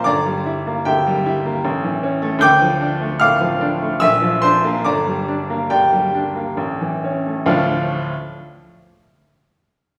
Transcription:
<<
  \new Staff \with { instrumentName = "Upright piano" } { \time 3/4 \key d \minor \tempo 4 = 72 <d'' bes'' d'''>4 <g' e'' g''>4. r8 | <g'' d''' g'''>4 <f'' d''' f'''>4 <e'' e'''>8 <c'' c'''>8 | <d'' bes'' d'''>4 <g' d'' g''>4. r8 | <d, a, f a d' f' f''>8 r2 r8 | }
  \new Staff \with { instrumentName = "Upright piano" } { \clef bass \time 3/4 \key d \minor g,,16 g16 e'16 bes16 d,16 g16 e'16 bes16 a,,16 e16 cis'16 a16 | d,16 f16 d'16 a16 a,16 f16 d'16 a16 bes,,16 f16 d'16 bes16 | g,,16 g16 d'16 bes16 d,16 g16 d'16 bes16 a,,16 e16 cis'16 a16 | r2. | }
>>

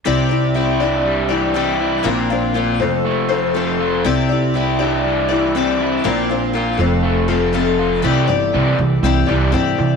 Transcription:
<<
  \new Staff \with { instrumentName = "Twelve-string acoustic guitar" } { \time 4/4 \key c \major \tempo 4 = 120 <c' e' g' d''>8 <e' g' d''>8 <c' e' g' d''>8 <e' g' d''>4 <e' g' d''>8 <c' e' g' d''>4 | <bes, bes c' d' f'>8 <c' d' f'>8 <bes c' d' f'>8 <f' a' c''>4 <f' a' c''>8 <c' f' a' c''>4 | <c' e' g' d''>8 <e' g' d''>8 <c' e' g' d''>8 <e' g' d''>4 <e' g' d''>8 <c' e' g' d''>4 | <bes, bes c' d' f'>8 <c' d' f'>8 <bes c' d' f'>8 <a c' f' a'>4 <a c' f' a'>8 <a c' f' a'>4 |
<c' e' g' d''>8 <e' g' d''>4. <c' e' g' d''>8 <e' g' d''>8 <c' e' g' d''>4 | }
  \new Staff \with { instrumentName = "Overdriven electric guitar" } { \clef bass \time 4/4 \key c \major c4 e'8 d'8 g8 e8 g8 e'8 | bes,4 f'8 f,8 a8 f8 a8 f'8 | c4 e'8 d'8 g8 e8 g8 e'8 | bes,4 f'8 f,8 a8 f8 a8 f'8 |
<c e g>8 <c e>8 <c e g>8 <c e>8 <c e>8 <c e g>8 <c e>8 <c e>8 | }
  \new Staff \with { instrumentName = "Upright bass" } { \clef bass \time 4/4 \key c \major c,1 | bes,,4. f,,2~ f,,8 | c,1 | bes,,4. f,,2~ f,,8 |
c,8 g,,8 c,8 c,8 c,8 c,8 g,8 c8 | }
>>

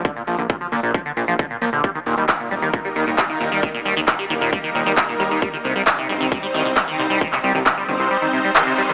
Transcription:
<<
  \new Staff \with { instrumentName = "Acid bass" } { \clef bass \time 4/4 \key c \minor \tempo 4 = 134 d16 bes,16 f16 d16 bes,16 f16 d16 bes,16 f16 d16 bes,16 f16 d16 bes,16 f16 d16 | g16 ees16 bes,16 g16 ees16 bes,16 g16 ees16 bes,16 g16 ees16 bes,16 g16 ees16 bes,16 g16 | ees16 bes,16 g16 ees16 bes,16 g16 ees16 bes,16 g16 ees16 bes,16 g16 ees16 bes,16 g16 ees16 | g16 ees16 c16 g16 ees16 c16 g16 ees16 c16 g16 ees16 c16 g16 ees16 c16 g16 |
ees16 c16 g16 ees16 c16 g16 ees16 c16 g16 ees16 c16 g16 ees16 c16 g16 ees16 | }
  \new Staff \with { instrumentName = "Analog synth bass" } { \clef bass \time 4/4 \key c \minor r8 bes,,16 bes,,16 r8 bes,16 bes,,16 r8 bes,,16 bes,,16 r8 bes,16 bes,,16 | r8 ees,16 ees,16 r8 ees,,16 ees,16 r8 ees,16 ees,16 r8 ees,16 ees,16 | r8 ees,16 ees,16 r8 ees,,16 ees,16 r8 ees,16 ees,16 r8 ees,16 ees,16 | r8 c,16 c,16 r8 g,,16 c,16 r8 c,16 c,16 r8 c,16 c,16 |
r8 c,16 c,16 r8 g,,16 c,16 r2 | }
  \new DrumStaff \with { instrumentName = "Drums" } \drummode { \time 4/4 <hh bd>16 hh16 hho16 hh16 <hh bd>16 hh16 hho16 hh16 <hh bd>16 hh16 hho16 hh16 <hh bd>16 hh16 hho16 hh16 | <hh bd>16 hh16 hho16 hh16 <hc hh bd>16 hh16 hho16 hh16 <hh bd>16 hh16 hho16 hh16 <hc hh bd>16 hh16 hho16 hh16 | <hh bd>16 hh16 hho16 hh16 <hc hh bd>16 hh16 hho16 hh16 <hh bd>16 hh16 hho16 hh16 <hc hh bd>16 hh16 hho16 hh16 | <hh bd>16 hh16 hho16 hh16 <hc hh bd>16 hh16 hho16 hh16 <hh bd>16 hh16 hho16 hh16 <hc hh bd>16 hh16 hho16 hh16 |
<hh bd>16 <hc hh>16 hho16 hh16 <hc hh bd>16 hh16 hho16 hh16 hh16 hho16 hho16 hh16 <hc hh>16 hh16 hho16 hh16 | }
>>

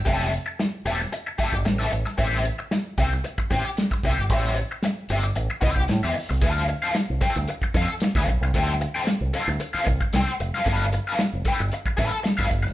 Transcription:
<<
  \new Staff \with { instrumentName = "Overdriven electric guitar" } { \time 4/4 \key d \dorian \tempo 4 = 113 <g' a' e''>8 r4 <g' a' e''>16 r8. <g' a' e''>16 r8 <g' a' e''>16 r8 | <g' c'' e''>8 r4 <g' c'' e''>16 r8. <g' c'' g''>16 r8. <g' c'' e''>16 r16 | <g' c'' e''>8 r4 <g' c'' e''>16 r8. <g' c'' e''>8 r16 <g' c'' e''>16 r8 | <a' c'' f''>8 r16 <a' c'' f''>16 r8 <a' c'' g''>16 r8. <a' c'' f''>16 r8 <a' c'' f''>8 r16 |
<a' c'' g''>16 r8 <a' c'' g''>16 r8 <a' c'' f''>16 r8 <a' c'' f''>16 r8 <a' c'' g''>16 r8 <a' c'' f''>16 | <a' b' f''>16 r8 <a' b' f''>16 r8 <a' b' g''>16 r8. <a' b' f''>8 r16 <a' b' f''>16 r8 | }
  \new Staff \with { instrumentName = "Fingered electric bass" } { \clef bass \time 4/4 \key d \dorian f,,8. r8. e,,8 r8. g,,16 a,,8 a,,16 r16 | a,,8. r8. c,8 r8 a,,16 r8. c,16 g,,16 | a,,8. r8. g,,8 a,,16 r16 c,16 c,16 a,16 e,16 r16 c,16 | d,8. r8 c,16 r16 d,16 r8 f,16 r8 d,16 b,,16 c,16 |
d,8. r8 c,16 r16 d,16 r8 c,16 r16 c,16 r16 f,,16 r16 | g,,8. r8 f,,16 r16 g,,16 r8 a,,16 r8 g,,16 g,,16 f,,16 | }
  \new DrumStaff \with { instrumentName = "Drums" } \drummode { \time 4/4 <hh bd>16 sn16 hh8 <hh sn>8 hh16 sn16 hh8 <hh bd>16 bd16 <hh sn>16 sn16 hh16 sn16 | <hh bd>16 sn16 hh8 <hh sn>8 <hh bd>16 sn16 hh16 bd16 <hh bd>8 <hh sn>16 <bd sn>16 <hh bd>16 sn16 | <hh bd>16 sn16 hh8 <hh sn>8 hh8 hh8 <hh bd>16 bd16 <hh sn>16 sn16 hho16 sn16 | <hh bd>16 sn16 hh8 <hh sn>8 <hh bd>16 sn16 hh16 bd16 <hh bd>8 <hh sn>16 <bd sn>16 <hh bd>16 sn16 |
<hh bd>16 sn16 hh8 <hh sn>8 hh16 sn16 hh8 <hh bd>16 bd16 <hh sn>16 sn16 hh16 sn16 | <hh bd>16 sn16 hh8 <hh sn>8 <hh bd>8 hh16 bd16 <hh bd>8 <hh sn>16 <bd sn>16 <hh bd>16 sn16 | }
>>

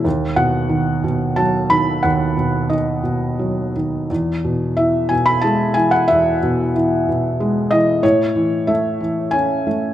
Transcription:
<<
  \new Staff \with { instrumentName = "Felt piano" } { \time 3/4 \key e \major \tempo 4 = 91 r8 fis''4. a''8 b''8 | fis''4 dis''4. r8 | r4 e''8 gis''16 b''16 a''8 gis''16 fis''16 | e''2~ e''8 dis''8 |
cis''4 e''4 gis''4 | }
  \new Staff \with { instrumentName = "Felt piano" } { \clef bass \time 3/4 \key e \major dis,8 b,8 dis8 b,8 fis8 dis8 | dis,8 b,8 dis8 b,8 fis8 dis8 | e,8 b,8 e8 b,8 gis8 e8 | e,8 b,8 e8 b,8 gis8 e8 |
a,8 e8 a8 e8 cis'8 a8 | }
>>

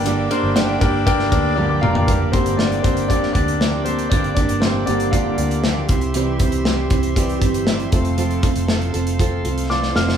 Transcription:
<<
  \new Staff \with { instrumentName = "Tonewheel organ" } { \time 4/4 \key g \minor \tempo 4 = 118 << { <d'' d'''>1 | <d'' d'''>1~ | <d'' d'''>2.~ <d'' d'''>8 <c'' c'''>8~ | <c'' c'''>1~ |
<c'' c'''>1 | } \\ { <bes' g''>1 | <bes' g''>1~ | <bes' g''>2.~ <bes' g''>8 <g' e''>8~ | <g' e''>2.~ <g' e''>8 <a' f''>8~ |
<a' f''>1 | } >> }
  \new Staff \with { instrumentName = "Grand piano" } { \time 4/4 \key g \minor << { <d' bes' g''>8 <d' bes' c''>8 <d' bes' g''>8 <d' bes' g''>8 <d' bes' g''>8 <d' bes' d''>8 r16 <a'' d'''>16 bes''16 <d'' g''>16~ | <d'' g''>16 r2. r8. | r1 | r1 |
r1 | } \\ { r2. <d' d''>8 <f' f''>8 | <bes bes'>8 <c' c''>8 <d' d''>8 <c' c''>8 <d' d''>8 <d' d''>4 <c' c''>8 | <d' d''>8 <d' d''>8 <c' c''>8 <d' d''>8 <f' f''>4. r8 | r1 |
r2. <d'' d'''>8 <f'' f'''>8 | } >> }
  \new Staff \with { instrumentName = "Grand piano" } { \clef bass \time 4/4 \key g \minor g,4 r2. | r8 <d g bes>8 r2. | r4. <d g bes>2 r8 | <e g c'>4. r8 <e g c'>8 r4 <f a c'>8~ |
<f a c'>4 r2. | }
  \new Staff \with { instrumentName = "Steel-string acoustic guitar" } { \time 4/4 \key g \minor <g, d g bes d' g'>8 <g bes d' g'>8 <g, d g bes d' g'>8 <g bes d' g'>8 <g bes d' g'>8 <g bes d' g'>8 <g, d g bes d' g'>8 <g bes d' g'>8 | <g, d g bes d' g'>8 <g bes d' g'>8 <g bes d' g'>8 <g bes d' g'>8 <g, d g bes d' g'>8 <g bes d' g'>8 <g bes d' g'>8 <g bes d' g'>8 | <g, d g bes d' g'>8 <g bes d' g'>8 <g bes d' g'>8 <g bes d' g'>8 <g, d g bes d' g'>8 <g bes d' g'>8 <g bes d' g'>8 <c' e' g'>8 | <c g c' e' g'>8 <c' e' g'>8 <g c' e' g'>8 <c' e' g'>8 <c g c' e' g'>8 <c' e' g'>8 <g c' e' g'>8 <c' f' a'>8 |
<f c' f' a'>8 <c' f' a'>8 <f c' f' a'>8 <c' f' a'>8 <f c' f' a'>8 <c' f' a'>8 <f c' f' a'>8 <c' f' a'>8 | }
  \new Staff \with { instrumentName = "Fingered electric bass" } { \clef bass \time 4/4 \key g \minor g,,8 r16 g,,8. g,,4 d,4 f,,8 | g,,8. g,,8. g,,4 d,4. | g,,8. g,,8. g,,4 d,4 c,8~ | c,8. c,8. c,4 g,,4 f,,8~ |
f,,8 r16 f,,8. f,,4 c,4 f,,8 | }
  \new DrumStaff \with { instrumentName = "Drums" } \drummode { \time 4/4 <hhp cymr>8 cymr8 <cymr sn>8 <bd cymr>8 <bd cymr>16 sn16 <bd cymr>8 tommh8 toml16 tomfh16 | <hh bd>8 <hh bd>16 hh16 sn16 hh16 <hh bd>16 hh16 <hh bd>16 sn16 <hh bd>16 hh16 sn8 hh16 hh16 | <hh bd>16 hh16 <hh bd>16 hh16 sn8 hh16 hh16 <hh bd>8 hh16 hh16 sn8 <hh bd>16 hh16 | hh8 <hh bd>16 hh16 sn8 <hh bd>16 hh16 <hh bd>16 hh16 <hh bd>16 hh16 sn16 hh16 <hh bd>16 hh16 |
hh16 hh16 <hh bd>16 hh16 sn16 hh16 hh16 hh16 <hh bd>8 hh16 hh16 sn16 sn16 sn16 sn16 | }
>>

